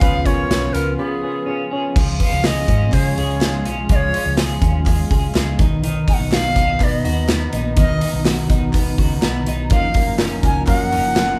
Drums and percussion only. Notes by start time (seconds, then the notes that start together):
0.01 kick, closed hi-hat
0.26 kick, closed hi-hat
0.51 snare, closed hi-hat
0.75 closed hi-hat
1.96 kick, crash
2.20 kick, hi-hat pedal, open hi-hat
2.44 snare, clap, hi-hat pedal, open hi-hat
2.68 kick, hi-hat pedal, open hi-hat
2.92 kick, clap, hi-hat pedal, open hi-hat
3.17 hi-hat pedal, open hi-hat
3.41 snare, clap, hi-hat pedal, open hi-hat
3.65 hi-hat pedal, open hi-hat
3.89 kick, hi-hat pedal, open hi-hat
4.14 hi-hat pedal, open hi-hat
4.37 snare, clap, hi-hat pedal, open hi-hat
4.62 kick, hi-hat pedal, open hi-hat
4.86 kick, clap, hi-hat pedal, open hi-hat
5.11 kick, hi-hat pedal, open hi-hat
5.35 snare, clap, hi-hat pedal, open hi-hat
5.59 kick, hi-hat pedal, open hi-hat
5.84 hi-hat pedal, open hi-hat
6.08 kick, hi-hat pedal, open hi-hat
6.32 snare, clap, hi-hat pedal, open hi-hat
6.56 kick, hi-hat pedal, open hi-hat
6.80 kick, clap, hi-hat pedal, open hi-hat
7.05 hi-hat pedal, open hi-hat
7.29 snare, clap, hi-hat pedal, open hi-hat
7.53 hi-hat pedal, open hi-hat
7.77 kick, hi-hat pedal, open hi-hat
8.01 hi-hat pedal, open hi-hat
8.25 snare, clap, hi-hat pedal, open hi-hat
8.50 kick, hi-hat pedal, open hi-hat
8.73 kick, clap, hi-hat pedal, open hi-hat
8.98 kick, hi-hat pedal, open hi-hat
9.22 snare, clap, hi-hat pedal, open hi-hat
9.47 hi-hat pedal, open hi-hat
9.70 kick, hi-hat pedal, open hi-hat
9.94 kick, hi-hat pedal, open hi-hat
10.19 snare, clap, hi-hat pedal, open hi-hat
10.43 kick, hi-hat pedal, open hi-hat
10.67 kick, clap, hi-hat pedal, open hi-hat
10.92 hi-hat pedal, open hi-hat
11.16 snare, clap, hi-hat pedal, open hi-hat